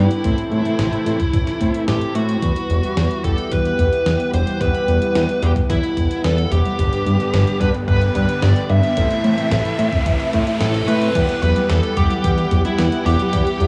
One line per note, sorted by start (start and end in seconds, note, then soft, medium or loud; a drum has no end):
0.00 0.21 G2 medium
0.00 0.22 D3 medium
0.00 0.21 G3 medium
0.00 0.22 G3 medium
0.00 0.21 B3 medium
0.00 0.22 B3 medium
0.00 0.21 D4 medium
0.00 1.84 E4 medium
0.00 0.21 G4 medium
0.00 0.22 G4 medium
0.00 0.21 B4 loud
0.11 closed hi-hat soft
0.24 0.35 A1 loud
0.24 0.62 A2 loud
0.24 2.40 C3 medium
0.24 2.40 E3 medium
0.24 2.40 A3 medium
0.24 0.62 A3 medium
0.24 0.62 C4 medium
0.24 2.40 E4 medium
0.24 0.62 E4 medium
0.24 0.62 A4 medium
0.24 0.62 C5 loud
0.24 kick loud
0.24 closed hi-hat medium
0.38 closed hi-hat soft
0.52 0.62 A2 loud
0.52 closed hi-hat soft
0.65 1.03 A2 medium
0.65 1.03 A3 medium
0.65 1.03 C4 medium
0.65 1.03 E4 medium
0.65 1.03 A4 medium
0.65 1.03 C5 medium
0.65 closed hi-hat soft
0.79 0.90 A1 loud
0.79 snare loud
0.79 closed hi-hat medium
0.93 closed hi-hat soft
1.06 1.17 A2 medium
1.06 1.19 A2 medium
1.06 1.19 A3 medium
1.06 1.19 C4 medium
1.06 1.19 E4 medium
1.06 1.19 A4 medium
1.06 1.19 C5 loud
1.06 closed hi-hat medium
1.20 kick loud
1.20 closed hi-hat soft
1.33 1.44 A1 loud
1.33 kick loud
1.33 closed hi-hat medium
1.47 snare soft
1.47 closed hi-hat soft
1.61 1.72 A2 medium
1.61 2.39 A2 medium
1.61 2.39 A3 medium
1.61 2.39 C4 medium
1.61 2.39 E4 medium
1.61 2.39 A4 medium
1.61 2.39 C5 medium
1.61 kick medium
1.61 closed hi-hat medium
1.74 closed hi-hat soft
1.88 1.99 A1 medium
1.88 2.15 G4 medium
1.88 snare loud
1.88 closed hi-hat medium
2.01 closed hi-hat soft
2.15 2.37 A2 medium
2.15 3.24 F#4 medium
2.15 closed hi-hat medium
2.29 closed hi-hat soft
2.42 2.53 E2 loud
2.42 6.75 E3 medium
2.42 2.80 G3 medium
2.42 6.75 G3 medium
2.42 2.80 B3 medium
2.42 8.93 B3 medium
2.42 2.80 E4 medium
2.42 2.80 F#4 medium
2.42 2.80 B4 medium
2.42 6.75 F#5 medium
2.42 kick loud
2.42 closed hi-hat medium
2.42 riser medium
2.56 closed hi-hat soft
2.70 2.81 E1 loud
2.70 closed hi-hat soft
2.83 2.96 E3 medium
2.83 3.21 G3 medium
2.83 3.21 B3 medium
2.83 3.21 E4 medium
2.83 3.21 F#4 medium
2.83 3.21 B4 loud
2.83 closed hi-hat soft
2.97 3.08 E2 loud
2.97 3.10 E4 medium
2.97 snare loud
2.97 closed hi-hat medium
3.11 closed hi-hat soft
3.24 3.35 E1 medium
3.24 4.57 G3 medium
3.24 4.57 B3 medium
3.24 3.33 E4 medium
3.24 4.57 E4 medium
3.24 4.57 F#4 medium
3.24 4.57 G4 loud
3.24 3.52 A4 medium
3.24 kick loud
3.24 closed hi-hat medium
3.38 3.47 G3 loud
3.38 closed hi-hat soft
3.52 3.73 E2 medium
3.52 4.29 B4 medium
3.52 kick loud
3.52 closed hi-hat loud
3.65 closed hi-hat soft
3.79 3.90 E1 loud
3.79 kick medium
3.79 closed hi-hat medium
3.93 4.05 E3 medium
3.93 closed hi-hat soft
4.06 4.17 E2 loud
4.06 4.19 E4 medium
4.06 snare loud
4.06 closed hi-hat medium
4.20 closed hi-hat soft
4.33 4.44 E1 loud
4.33 4.42 E4 medium
4.33 4.61 C5 medium
4.33 closed hi-hat medium
4.47 4.56 G3 loud
4.47 closed hi-hat soft
4.61 4.72 E2 loud
4.61 4.69 E3 medium
4.61 4.98 G3 medium
4.61 4.98 B3 medium
4.61 4.98 E4 medium
4.61 4.98 F#4 medium
4.61 4.98 G4 loud
4.61 5.45 B4 loud
4.61 kick loud
4.61 closed hi-hat medium
4.74 closed hi-hat soft
4.88 4.99 E1 loud
4.88 4.93 E3 medium
4.88 closed hi-hat soft
5.02 5.15 E3 medium
5.02 5.39 G3 medium
5.02 5.39 B3 medium
5.02 5.39 E4 medium
5.02 5.39 F#4 medium
5.02 5.39 G4 loud
5.02 closed hi-hat soft
5.15 5.26 E2 loud
5.15 5.28 E4 medium
5.15 snare loud
5.15 closed hi-hat medium
5.29 closed hi-hat soft
5.42 5.53 E1 medium
5.42 5.55 G3 medium
5.42 5.55 B3 medium
5.42 5.51 E4 medium
5.42 5.55 E4 medium
5.42 5.55 F#4 medium
5.42 5.55 G4 loud
5.42 5.50 G4 medium
5.42 closed hi-hat medium
5.56 5.65 G3 loud
5.56 kick loud
5.56 closed hi-hat soft
5.70 5.81 E2 loud
5.70 6.21 E4 medium
5.70 kick loud
5.70 closed hi-hat loud
5.83 closed hi-hat soft
5.97 6.08 E1 medium
5.97 6.02 E3 medium
5.97 kick medium
5.97 closed hi-hat medium
6.11 6.24 E3 medium
6.11 closed hi-hat soft
6.24 6.46 E2 medium
6.24 6.37 E4 medium
6.24 6.51 A4 medium
6.24 snare loud
6.24 closed hi-hat medium
6.38 closed hi-hat soft
6.52 6.63 E1 loud
6.52 6.60 E4 medium
6.52 7.61 G4 loud
6.52 closed hi-hat medium
6.65 6.74 G3 loud
6.65 closed hi-hat soft
6.79 6.90 G1 loud
6.79 7.17 G2 medium
6.79 8.95 D3 medium
6.79 6.88 D3 medium
6.79 7.17 G3 medium
6.79 8.95 G3 medium
6.79 7.17 B3 medium
6.79 7.17 D4 medium
6.79 7.17 G4 medium
6.79 8.95 G4 medium
6.79 7.17 B4 medium
6.79 kick loud
6.79 closed hi-hat medium
6.93 closed hi-hat soft
7.06 7.17 G2 loud
7.06 7.11 D3 medium
7.06 closed hi-hat soft
7.20 7.57 G2 medium
7.20 7.33 D3 medium
7.20 7.57 G3 medium
7.20 7.57 B3 medium
7.20 7.57 D4 medium
7.20 7.57 G4 medium
7.20 7.57 B4 loud
7.20 closed hi-hat soft
7.33 7.44 G1 loud
7.33 7.46 G4 medium
7.33 snare loud
7.33 closed hi-hat medium
7.47 closed hi-hat soft
7.61 7.72 G2 medium
7.61 8.94 G2 medium
7.61 8.94 G3 medium
7.61 8.94 B3 medium
7.61 8.94 D4 medium
7.61 7.69 G4 medium
7.61 8.94 G4 medium
7.61 8.94 B4 loud
7.61 7.68 B4 loud
7.61 kick loud
7.61 closed hi-hat medium
7.74 7.83 B3 loud
7.74 closed hi-hat soft
7.88 8.10 G1 medium
7.88 7.97 D3 medium
7.88 8.44 B4 loud
7.88 kick loud
7.88 closed hi-hat medium
8.01 closed hi-hat soft
8.15 8.26 G2 loud
8.15 8.21 D3 medium
8.15 kick medium
8.15 closed hi-hat medium
8.29 8.42 D3 medium
8.29 closed hi-hat soft
8.42 8.53 G1 loud
8.42 8.55 G4 medium
8.42 8.70 D5 loud
8.42 snare loud
8.42 closed hi-hat medium
8.56 closed hi-hat soft
8.70 8.81 G2 loud
8.70 8.79 G4 medium
8.70 10.57 E5 loud
8.70 closed hi-hat medium
8.83 8.92 B3 loud
8.83 closed hi-hat soft
8.97 9.08 A1 loud
8.97 9.35 A2 loud
8.97 11.13 C3 medium
8.97 9.06 E3 medium
8.97 11.13 E3 medium
8.97 11.13 A3 medium
8.97 9.35 A3 medium
8.97 9.35 C4 medium
8.97 11.13 E4 medium
8.97 9.35 E4 medium
8.97 9.35 A4 medium
8.97 9.35 C5 loud
8.97 kick loud
8.97 closed hi-hat medium
9.11 closed hi-hat soft
9.24 9.35 A2 loud
9.24 9.30 E3 medium
9.24 closed hi-hat soft
9.38 9.76 A2 medium
9.38 9.51 E3 medium
9.38 9.76 A3 medium
9.38 9.76 C4 medium
9.38 9.76 E4 medium
9.38 9.76 A4 medium
9.38 9.76 C5 medium
9.38 closed hi-hat soft
9.51 9.62 A1 loud
9.51 9.65 A4 medium
9.51 snare loud
9.51 closed hi-hat medium
9.65 closed hi-hat soft
9.79 9.90 A2 medium
9.79 9.91 A2 medium
9.79 9.91 A3 medium
9.79 9.91 C4 medium
9.79 9.92 E4 medium
9.79 9.92 A4 medium
9.79 9.88 A4 medium
9.79 9.92 C5 loud
9.79 closed hi-hat medium
9.92 10.01 C4 loud
9.92 kick loud
9.92 closed hi-hat soft
10.06 10.17 A1 medium
10.06 10.15 E3 medium
10.06 kick loud
10.06 closed hi-hat medium
10.06 swell medium
10.20 closed hi-hat soft
10.33 11.12 A2 medium
10.33 10.44 A2 medium
10.33 10.39 E3 medium
10.33 11.12 A3 medium
10.33 11.12 C4 medium
10.33 11.12 E4 medium
10.33 11.12 A4 medium
10.33 11.12 C5 medium
10.33 kick medium
10.33 closed hi-hat medium
10.47 10.60 E3 medium
10.47 closed hi-hat soft
10.61 10.82 A1 medium
10.61 10.74 A4 medium
10.61 10.86 A4 loud
10.61 snare loud
10.61 closed hi-hat medium
10.74 closed hi-hat soft
10.88 11.10 A2 medium
10.88 10.97 A4 medium
10.88 11.42 B4 loud
10.88 closed hi-hat medium
11.02 11.10 C4 loud
11.02 closed hi-hat soft
11.15 11.26 E2 loud
11.15 11.24 E3 medium
11.15 13.67 E3 medium
11.15 11.53 G3 medium
11.15 13.67 G3 medium
11.15 11.53 B3 medium
11.15 13.67 B3 medium
11.15 11.53 E4 medium
11.15 11.53 F#4 medium
11.15 11.53 G4 medium
11.15 13.67 F#5 medium
11.15 kick loud
11.15 closed hi-hat medium
11.15 crash loud
11.29 closed hi-hat soft
11.42 11.53 E1 loud
11.42 11.51 F#3 loud
11.42 11.71 B4 loud
11.42 11.69 B4 loud
11.42 closed hi-hat soft
11.56 11.94 G3 medium
11.56 11.62 G3 loud
11.56 11.94 B3 medium
11.56 11.94 E4 medium
11.56 11.94 F#4 medium
11.56 11.94 G4 loud
11.56 closed hi-hat soft
11.70 11.81 E2 loud
11.70 11.83 E3 loud
11.70 11.95 A4 loud
11.70 snare loud
11.70 closed hi-hat medium
11.83 closed hi-hat soft
11.97 12.08 E1 medium
11.97 12.06 E3 medium
11.97 13.30 G3 medium
11.97 13.30 B3 medium
11.97 13.30 E4 medium
11.97 12.61 G4 loud
11.97 13.30 G4 loud
11.97 12.61 G4 loud
11.97 13.30 F#5 medium
11.97 kick loud
11.97 closed hi-hat medium
12.11 12.24 F#3 loud
12.11 closed hi-hat soft
12.24 12.46 E2 medium
12.24 12.33 E3 medium
12.24 kick loud
12.24 closed hi-hat loud
12.38 closed hi-hat soft
12.51 12.63 E1 loud
12.51 12.61 F#3 loud
12.51 kick medium
12.51 closed hi-hat medium
12.65 12.71 G3 loud
12.65 13.06 E4 medium
12.65 13.07 E4 loud
12.65 closed hi-hat soft
12.79 12.90 E2 loud
12.79 12.92 E3 loud
12.79 snare loud
12.79 closed hi-hat medium
12.92 closed hi-hat soft
13.06 13.17 E1 loud
13.06 13.15 E3 medium
13.06 13.67 G4 medium
13.06 13.67 G4 loud
13.06 open hi-hat medium
13.20 13.33 F#3 loud
13.20 closed hi-hat soft
13.33 13.44 E2 loud
13.33 13.42 E3 medium
13.33 13.67 G3 loud
13.33 13.67 B3 medium
13.33 13.67 E4 medium
13.33 13.67 G4 loud
13.33 13.67 F#5 medium
13.33 kick loud
13.33 closed hi-hat loud
13.47 closed hi-hat soft
13.61 13.67 E1 loud
13.61 13.67 F#3 loud
13.61 closed hi-hat soft